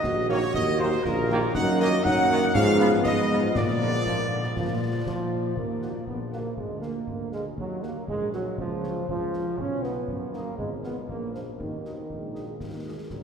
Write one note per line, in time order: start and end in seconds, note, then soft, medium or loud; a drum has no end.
0.00 1.00 F#4 loud
0.00 0.25 D#5 loud
0.00 0.26 D#5 loud
0.00 concert bass drum medium
0.00 snare medium
0.05 0.47 A#1 medium
0.29 0.38 D#3 medium
0.29 0.39 F#3 medium
0.29 0.38 A#3 medium
0.29 0.39 A#3 medium
0.29 0.39 D#4 medium
0.29 0.54 C#5 loud
0.29 0.36 C#5 loud
0.42 snare medium
0.54 0.97 D#2 loud
0.54 0.78 D#5 loud
0.54 concert bass drum medium
0.54 snare medium
0.78 0.89 D#3 medium
0.78 0.89 F#3 medium
0.78 0.89 A#3 medium
0.78 0.89 D#4 medium
0.78 0.84 C5 loud
0.78 1.05 C5 loud
0.92 snare soft
1.04 1.47 A#1 loud
1.04 1.51 F4 loud
1.04 1.54 A#4 loud
1.04 1.51 A#4 medium
1.04 concert bass drum medium
1.04 snare medium
1.30 1.39 D#3 loud
1.30 1.39 F#3 medium
1.30 1.39 A#3 loud
1.30 1.39 A#3 medium
1.30 1.39 D#4 medium
1.30 snare medium
1.54 1.99 F#2 loud
1.54 2.02 F#3 medium
1.54 2.02 A#3 medium
1.54 2.01 D#4 loud
1.54 2.02 D#4 loud
1.54 1.60 F#5 loud
1.54 1.78 F#5 loud
1.54 concert bass drum loud
1.54 snare medium
1.54 crash soft
1.68 snare medium
1.79 1.88 D#3 loud
1.79 1.88 A#3 loud
1.79 2.03 D#5 loud
1.79 1.87 D#5 loud
1.79 snare medium
2.04 2.49 F#2 loud
2.04 2.52 F#3 loud
2.04 2.52 A#3 loud
2.04 2.51 D#4 loud
2.04 2.52 D#4 loud
2.04 2.55 F#5 loud
2.04 2.51 F#5 loud
2.04 concert bass drum medium
2.04 snare medium
2.31 2.39 D#3 loud
2.31 2.40 A#3 loud
2.42 snare medium
2.54 2.92 G#2 loud
2.54 3.55 F3 loud
2.54 3.56 B3 loud
2.54 3.05 C#4 loud
2.54 3.52 F4 loud
2.54 2.79 F5 loud
2.54 2.78 F5 loud
2.54 concert bass drum medium
2.54 snare medium
2.79 2.88 F3 loud
2.79 2.88 B3 loud
2.79 2.91 F5 loud
2.79 3.04 F5 loud
2.93 snare medium
3.03 3.50 G#2 medium
3.03 3.54 B3 loud
3.03 3.51 D#5 loud
3.03 3.52 D#5 loud
3.03 concert bass drum medium
3.03 snare medium
3.30 3.39 F3 medium
3.30 3.39 B3 medium
3.30 snare medium
3.55 4.00 A#2 medium
3.55 5.28 F3 medium
3.55 5.27 A#3 medium
3.55 5.28 A#3 medium
3.55 5.28 F4 medium
3.55 5.27 D5 loud
3.55 concert bass drum medium
3.55 snare medium
3.55 crash soft
3.68 snare medium
3.80 3.89 F3 medium
3.80 3.89 A#3 medium
3.80 snare medium
4.05 4.50 A#2 medium
4.05 4.17 F3 medium
4.05 concert bass drum medium
4.05 snare medium
4.32 4.43 D3 medium
4.44 snare medium
4.56 5.00 A#2 medium
4.56 5.02 F3 medium
4.56 concert bass drum medium
4.56 snare medium
5.06 5.50 A#2 medium
5.06 5.53 F3 medium
5.06 concert bass drum medium
5.06 snare medium
5.57 5.98 D#2 soft
5.57 6.04 A#3 medium
5.57 concert bass drum medium
5.80 5.91 D#4 soft
5.80 5.91 F#4 soft
5.80 5.91 A#4 soft
5.80 5.89 F#5 soft
5.80 snare soft
6.07 6.49 A#1 soft
6.07 6.18 B3 medium
6.07 concert bass drum medium
6.31 6.56 A#3 medium
6.31 6.41 D#4 soft
6.31 6.41 F#4 soft
6.31 6.41 A#4 soft
6.31 6.40 F#5 soft
6.31 snare soft
6.57 6.99 D2 medium
6.57 6.82 G#3 medium
6.57 concert bass drum medium
6.81 7.28 A#3 medium
6.81 6.91 F4 soft
6.81 6.91 G#4 soft
6.81 6.91 A#4 soft
6.81 6.91 F5 soft
6.81 snare soft
7.07 7.49 D2 medium
7.07 concert bass drum medium
7.32 7.44 G#3 medium
7.32 7.42 F4 soft
7.32 7.42 G#4 soft
7.32 7.42 A#4 soft
7.32 7.42 F5 soft
7.32 snare soft
7.58 7.99 D#2 medium
7.58 7.82 F#3 medium
7.58 concert bass drum medium
7.82 8.08 A#3 medium
7.82 7.92 D#4 soft
7.82 7.92 F#4 soft
7.82 7.92 A#4 soft
7.82 7.91 F#5 soft
7.82 snare soft
8.08 8.50 A#1 medium
8.08 8.31 G#3 medium
8.08 concert bass drum medium
8.33 8.56 F#3 medium
8.33 8.43 D#4 soft
8.33 8.43 F#4 soft
8.33 8.43 A#4 soft
8.33 8.42 F#5 soft
8.33 snare soft
8.58 9.00 C#2 medium
8.58 9.05 F3 medium
8.58 concert bass drum medium
8.83 8.92 F4 soft
8.83 8.92 A#4 medium
8.83 8.92 C#5 soft
8.83 snare soft
9.08 9.46 C#2 medium
9.08 9.55 F3 medium
9.08 concert bass drum medium
9.34 9.43 A#4 soft
9.34 9.43 C#5 soft
9.34 snare soft
9.58 10.00 B1 medium
9.58 9.84 C#4 medium
9.58 concert bass drum medium
9.83 10.34 B3 medium
9.83 9.93 D#4 soft
9.83 9.93 F#4 soft
9.83 9.93 B4 soft
9.83 9.93 D#5 soft
9.83 snare soft
10.08 10.51 F#2 medium
10.08 concert bass drum medium
10.32 10.58 A#3 medium
10.32 10.42 D#4 soft
10.32 10.43 F#4 soft
10.32 10.43 B4 soft
10.32 10.44 D#5 soft
10.32 snare soft
10.58 11.01 G#1 medium
10.58 10.70 G#3 medium
10.58 concert bass drum medium
10.83 10.95 B3 medium
10.83 10.92 D#4 soft
10.83 10.92 F4 soft
10.83 10.93 B4 soft
10.83 10.93 F5 soft
10.83 snare soft
11.09 11.51 A#1 soft
11.09 11.32 A#3 medium
11.09 concert bass drum medium
11.34 11.45 F3 medium
11.34 11.43 D4 soft
11.34 11.43 F4 soft
11.34 11.43 A#4 soft
11.34 11.44 F5 soft
11.34 snare soft
11.59 12.02 D#2 soft
11.59 13.23 D#3 medium
11.59 concert bass drum medium
11.84 11.94 D#4 soft
11.84 11.94 F#4 soft
11.84 11.93 A#4 soft
11.84 11.94 D#5 soft
11.84 snare soft
12.09 12.52 A#1 soft
12.09 12.62 G#3 medium
12.09 concert bass drum medium
12.34 12.44 D#4 soft
12.34 12.44 F#4 soft
12.34 12.44 A#4 soft
12.34 12.44 D#5 soft
12.34 snare soft
12.60 13.02 D#2 soft
12.60 12.84 A#3 soft
12.60 concert bass drum medium
12.60 snare medium
12.84 13.09 G#3 soft
12.84 12.94 D#4 soft
12.84 12.94 F#4 soft
12.84 12.94 A#4 soft
12.84 12.94 D#5 soft
13.10 13.23 A#1 medium
13.10 13.23 F#3 soft
13.10 concert bass drum medium
13.10 snare soft